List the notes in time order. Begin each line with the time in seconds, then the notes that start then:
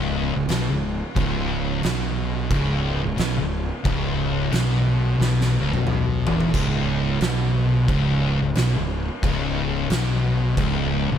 Already playing: C#1 C#2
0.36 C#1 C#2
0.49 B1 B2, snare, crash
0.69 C#1 C#2
1.16 C#1 C#2, kick, crash
1.82 B1 B2, snare, crash
2.51 C#1 C#2, kick, crash
3.04 C#1 C#2
3.16 B1 B2, snare, crash
3.37 C#1 C#2
3.84 C#1 C#2, kick, crash
4.52 B1 B2, snare, crash
5.19 B1 B2, snare
5.41 snare
5.60 C#1 C#2
5.73 B1 B2, high tom
5.87 mid tom
6.27 E1 E2, floor tom
6.40 floor tom
6.54 C#1 C#2, kick, splash, crash
7.21 B1 B2, snare, crash
7.88 C#1 C#2, kick, crash
8.42 C#1 C#2
8.55 B1 B2, snare, crash
8.76 C#1 C#2
9.23 C#1 C#2, kick, crash
9.90 B1 B2, snare, crash
10.57 C#1 C#2, kick, crash
11.11 C#1 C#2